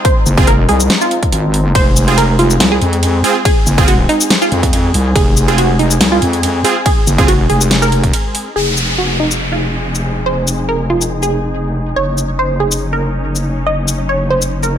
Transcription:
0.00 8.52 G#3 medium
0.00 8.52 C4 medium
0.00 1.73 D#4 medium
0.05 0.38 C5 loud
0.05 kick loud
0.05 closed hi-hat medium
0.26 0.67 F#1 medium
0.26 shaker medium
0.37 0.48 C4 medium
0.37 0.48 F4 medium
0.37 0.48 G#4 loud
0.37 kick loud
0.37 closed hi-hat medium
0.47 0.64 A#4 medium
0.47 closed hi-hat medium
0.69 0.88 C2 medium
0.69 0.93 G#4 medium
0.69 open hi-hat medium
0.80 shaker medium
0.90 snare loud
0.90 closed hi-hat medium
1.01 1.67 F4 loud
1.01 shaker medium
1.11 closed hi-hat medium
1.23 kick medium
1.23 closed hi-hat medium
1.32 1.74 G#1 loud
1.32 closed hi-hat medium
1.54 open hi-hat medium
1.75 2.59 F1 loud
1.75 8.54 G#4 medium
1.75 2.08 C5 loud
1.75 kick loud
1.75 closed hi-hat medium
1.75 ride medium
1.96 shaker medium
2.08 2.18 C4 medium
2.08 2.18 F4 medium
2.08 2.18 G#4 loud
2.08 closed hi-hat medium
2.18 2.34 A#4 loud
2.18 closed hi-hat medium
2.18 ride soft
2.39 2.63 F4 medium
2.39 open hi-hat medium
2.50 shaker medium
2.60 2.80 C2 loud
2.60 snare loud
2.60 closed hi-hat medium
2.60 ride medium
2.72 3.37 G#4 medium
2.82 3.22 F2 loud
2.82 closed hi-hat soft
2.93 closed hi-hat medium
3.03 closed hi-hat medium
3.03 ride soft
3.24 3.36 C4 loud
3.24 3.36 F4 medium
3.24 3.36 G#4 loud
3.24 open hi-hat medium
3.45 3.78 G#4 loud
3.45 kick loud
3.45 closed hi-hat medium
3.45 ride medium
3.67 4.08 F#1 loud
3.67 shaker medium
3.78 3.88 C4 medium
3.78 3.88 F4 medium
3.78 3.88 G#4 loud
3.78 kick loud
3.78 closed hi-hat medium
3.88 4.04 F#4 medium
3.88 closed hi-hat medium
3.88 ride soft
4.09 4.33 D#4 medium
4.09 open hi-hat medium
4.21 shaker medium
4.30 snare loud
4.30 closed hi-hat medium
4.30 ride medium
4.42 5.08 F4 loud
4.42 shaker medium
4.52 4.93 F2 loud
4.52 closed hi-hat soft
4.63 kick medium
4.63 closed hi-hat medium
4.73 closed hi-hat medium
4.73 ride soft
4.94 5.14 C2 loud
4.94 open hi-hat medium
5.16 5.99 F1 loud
5.16 5.48 G#4 loud
5.16 kick loud
5.16 closed hi-hat medium
5.16 ride medium
5.37 shaker medium
5.48 5.58 C4 loud
5.48 5.58 F4 medium
5.48 5.58 G#4 loud
5.48 closed hi-hat medium
5.58 5.74 F#4 medium
5.58 closed hi-hat medium
5.58 ride medium
5.79 6.04 D#4 loud
5.79 open hi-hat medium
5.91 shaker medium
6.01 6.20 C2 loud
6.01 snare loud
6.01 closed hi-hat medium
6.01 ride medium
6.12 6.78 F4 medium
6.22 6.63 F2 loud
6.22 closed hi-hat medium
6.33 closed hi-hat medium
6.43 closed hi-hat medium
6.43 ride soft
6.64 6.76 C4 loud
6.64 6.76 F4 medium
6.64 6.76 G#4 loud
6.64 open hi-hat medium
6.86 7.19 G#4 loud
6.86 kick loud
6.86 closed hi-hat medium
6.86 ride medium
7.07 7.48 F#1 loud
7.07 shaker medium
7.18 7.29 C4 medium
7.18 7.29 F4 medium
7.18 7.29 G#4 loud
7.18 kick loud
7.18 closed hi-hat medium
7.28 7.45 F#4 medium
7.28 closed hi-hat medium
7.28 ride medium
7.50 8.12 F1 medium
7.50 7.74 G#4 medium
7.50 open hi-hat medium
7.61 shaker medium
7.71 snare loud
7.71 closed hi-hat medium
7.71 ride medium
7.82 8.48 A#4 loud
7.82 shaker medium
7.92 closed hi-hat soft
8.03 kick medium
8.03 closed hi-hat medium
8.13 closed hi-hat medium
8.13 ride soft
8.35 open hi-hat loud
8.56 11.94 F1 medium
8.56 11.93 F3 medium
8.56 11.93 C4 medium
8.56 14.78 D#4 medium
8.56 8.89 G#4 medium
8.56 11.93 G#4 medium
8.56 downlifter medium
8.77 shaker medium
8.98 9.15 F#4 medium
9.20 9.44 D#4 medium
9.31 shaker medium
9.52 10.18 F4 medium
9.95 shaker medium
10.26 10.59 C5 loud
10.47 shaker medium
10.69 10.85 A#4 medium
10.90 11.14 F4 medium
11.01 shaker medium
11.23 11.88 G#4 medium
11.23 shaker soft
11.96 14.78 F#1 medium
11.96 14.78 F#3 medium
11.96 14.78 C#4 medium
11.96 12.29 C#5 medium
12.18 shaker medium
12.39 12.55 C5 medium
12.60 12.84 G#4 medium
12.72 shaker medium
12.93 13.59 A#4 medium
13.35 shaker medium
13.67 13.99 D#5 medium
13.88 shaker medium
14.09 14.26 C#5 medium
14.30 14.55 C5 medium
14.42 shaker medium
14.63 14.78 A#4 medium
14.63 shaker soft

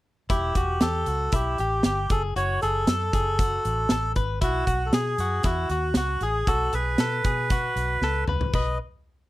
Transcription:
0.30 0.52 E1 medium
0.30 0.56 E4 medium
0.30 0.83 G4 medium
0.30 kick medium
0.30 closed hi-hat medium
0.55 0.78 E1 medium
0.55 0.82 F#4 medium
0.55 kick medium
0.55 closed hi-hat medium
0.81 1.03 E2 medium
0.81 1.08 G4 medium
0.81 1.34 A4 medium
0.81 snare loud
0.81 closed hi-hat medium
1.06 1.29 C#2 medium
1.06 1.33 F#4 medium
1.06 closed hi-hat medium
1.32 1.55 B1 medium
1.32 1.59 E4 medium
1.32 1.83 G4 medium
1.32 kick medium
1.32 closed hi-hat medium
1.58 1.81 A1 medium
1.58 1.84 G4 medium
1.58 closed hi-hat medium
1.83 2.06 G1 medium
1.83 2.11 G4 medium
1.83 snare medium
1.83 closed hi-hat medium
2.10 2.32 F#1 medium
2.10 2.36 G#4 medium
2.10 2.22 A4 medium
2.10 kick medium
2.10 closed hi-hat medium
2.36 2.58 F#1 medium
2.36 2.62 F#4 medium
2.36 2.60 C#5 loud
2.36 closed hi-hat medium
2.62 2.84 F#1 medium
2.62 2.88 G#4 medium
2.62 4.12 A4 medium
2.62 closed hi-hat medium
2.87 3.09 F#2 medium
2.87 3.14 A4 medium
2.87 snare loud
2.87 closed hi-hat medium
3.13 3.57 F#1 medium
3.13 3.39 G#4 medium
3.13 kick medium
3.13 closed hi-hat medium
3.39 3.87 F#4 medium
3.39 kick medium
3.39 closed hi-hat medium
3.65 3.87 A1 medium
3.65 closed hi-hat medium
3.89 4.12 A1 medium
3.89 4.16 A4 medium
3.89 snare medium
3.89 closed hi-hat medium
4.16 4.38 G#1 medium
4.16 4.41 B4 medium
4.16 kick medium
4.16 closed hi-hat medium
4.41 4.64 B1 medium
4.41 4.67 E4 medium
4.41 4.88 F#4 medium
4.41 kick medium
4.41 closed hi-hat medium
4.67 4.89 B1 medium
4.67 4.93 F#4 medium
4.67 kick medium
4.67 closed hi-hat medium
4.86 4.93 A4 medium
4.93 5.15 B2 loud
4.93 5.46 G#4 medium
4.93 5.19 G#4 medium
4.93 snare loud
4.93 closed hi-hat medium
5.18 5.40 F#2 medium
5.18 5.45 F#4 medium
5.18 closed hi-hat medium
5.43 5.66 E2 medium
5.43 5.71 E4 medium
5.43 5.95 F#4 medium
5.43 kick medium
5.43 snare soft
5.43 closed hi-hat medium
5.70 5.92 D#2 medium
5.70 5.96 F#4 medium
5.70 closed hi-hat medium
5.94 6.17 C#2 medium
5.94 6.23 F#4 medium
5.94 6.22 F#4 medium
5.94 snare medium
5.94 closed hi-hat medium
6.21 6.43 A1 medium
6.21 6.49 G#4 medium
6.21 6.48 G#4 medium
6.21 closed hi-hat medium
6.47 6.69 B1 loud
6.47 6.74 F#4 medium
6.47 6.74 A4 loud
6.47 kick medium
6.47 closed hi-hat medium
6.73 6.95 B1 medium
6.73 6.99 G#4 medium
6.73 8.24 B4 medium
6.73 closed hi-hat medium
6.98 7.21 B2 medium
6.98 7.25 A4 medium
6.98 snare loud
6.98 closed hi-hat medium
7.24 7.69 B2 medium
7.24 7.51 G#4 medium
7.24 kick medium
7.24 closed hi-hat medium
7.50 8.00 F#4 medium
7.50 kick medium
7.50 closed hi-hat medium
7.76 7.98 B1 medium
7.76 closed hi-hat medium
8.01 8.24 C#2 medium
8.01 8.28 A4 medium
8.01 snare medium
8.27 8.50 C#2 medium
8.27 8.54 B4 medium
8.27 mid tom medium
8.41 floor tom medium
8.53 8.78 B1 medium
8.53 8.78 B4 medium
8.53 8.78 D#5 medium
8.53 kick medium
8.53 crash medium

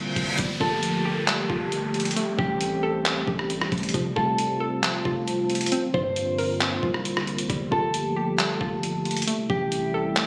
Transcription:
0.00 0.15 C2 loud
0.00 0.37 D3 medium
0.00 0.37 A#3 medium
0.00 0.34 C4 medium
0.00 0.37 F4 medium
0.00 0.34 C5 medium
0.00 reverse cymbal medium
0.16 0.38 C2 loud
0.16 kick loud
0.16 closed hi-hat medium
0.38 0.60 G1 loud
0.38 2.15 F3 medium
0.38 1.26 G3 medium
0.38 5.68 A3 medium
0.38 2.14 A#3 medium
0.38 3.91 G4 loud
0.38 kick loud
0.38 closed hi-hat medium
0.38 downlifter medium
0.60 1.46 G1 loud
0.60 1.48 F4 medium
0.60 2.12 A4 medium
0.60 kick loud
0.83 closed hi-hat medium
1.05 2.16 G4 medium
1.28 2.16 G3 medium
1.28 clap loud
1.28 closed hi-hat medium
1.50 2.14 G1 loud
1.50 2.16 F4 medium
1.50 kick loud
1.72 closed hi-hat medium
1.94 closed hi-hat soft
2.00 closed hi-hat medium
2.05 closed hi-hat medium
2.11 closed hi-hat medium
2.16 5.68 G3 medium
2.16 3.04 A3 medium
2.16 3.92 C4 medium
2.16 closed hi-hat medium
2.39 3.24 A1 loud
2.39 3.90 G4 medium
2.39 3.27 G4 medium
2.39 kick loud
2.61 closed hi-hat medium
2.83 3.94 A4 loud
3.05 3.94 A3 medium
3.05 clap loud
3.05 closed hi-hat medium
3.27 3.70 A1 loud
3.27 3.94 G4 medium
3.27 kick loud
3.39 cross-stick medium
3.50 closed hi-hat medium
3.61 cross-stick medium
3.72 3.93 A1 loud
3.72 kick loud
3.72 closed hi-hat soft
3.78 closed hi-hat medium
3.83 closed hi-hat medium
3.89 closed hi-hat medium
3.94 4.15 F1 loud
3.94 4.82 F3 medium
3.94 7.46 C4 medium
3.94 7.46 F4 medium
3.94 kick loud
3.94 closed hi-hat medium
4.16 5.02 F1 loud
4.16 5.04 F4 medium
4.16 5.68 A4 medium
4.16 kick loud
4.38 closed hi-hat medium
4.60 5.72 A4 loud
4.83 5.72 F3 medium
4.83 clap loud
4.83 closed hi-hat medium
5.05 5.69 F1 loud
5.05 5.72 F4 medium
5.05 kick loud
5.28 closed hi-hat medium
5.50 closed hi-hat soft
5.55 closed hi-hat medium
5.61 closed hi-hat medium
5.66 closed hi-hat medium
5.71 7.48 D3 medium
5.71 9.24 A#3 medium
5.71 6.60 C4 medium
5.71 closed hi-hat medium
5.94 6.79 G2 loud
5.94 6.82 F4 medium
5.94 7.46 C5 medium
5.94 kick loud
6.16 closed hi-hat medium
6.38 7.50 A#4 medium
6.38 open hi-hat medium
6.61 7.50 C4 medium
6.61 clap loud
6.61 closed hi-hat medium
6.83 7.47 C2 loud
6.83 7.50 F4 medium
6.83 kick loud
6.94 cross-stick medium
7.05 closed hi-hat medium
7.17 cross-stick medium
7.27 closed hi-hat soft
7.38 closed hi-hat medium
7.50 7.71 G1 loud
7.50 9.26 F3 medium
7.50 8.37 G3 medium
7.50 10.27 A3 medium
7.50 9.26 G4 medium
7.50 kick loud
7.50 closed hi-hat medium
7.71 8.57 G1 loud
7.71 8.59 F4 medium
7.71 9.24 A4 medium
7.71 kick loud
7.94 closed hi-hat medium
8.16 9.27 G4 medium
8.39 9.27 G3 medium
8.39 clap loud
8.39 closed hi-hat medium
8.61 9.25 G1 loud
8.61 9.27 F4 medium
8.61 kick loud
8.83 closed hi-hat medium
9.05 closed hi-hat soft
9.11 closed hi-hat medium
9.17 closed hi-hat medium
9.22 closed hi-hat medium
9.27 10.27 C3 medium
9.27 10.27 G3 medium
9.27 10.15 A3 medium
9.27 10.27 E4 medium
9.27 closed hi-hat medium
9.50 10.27 A1 loud
9.50 10.27 G4 medium
9.50 kick loud
9.72 closed hi-hat medium
9.94 10.27 A4 loud
10.16 10.27 A3 medium
10.16 clap loud
10.16 closed hi-hat medium

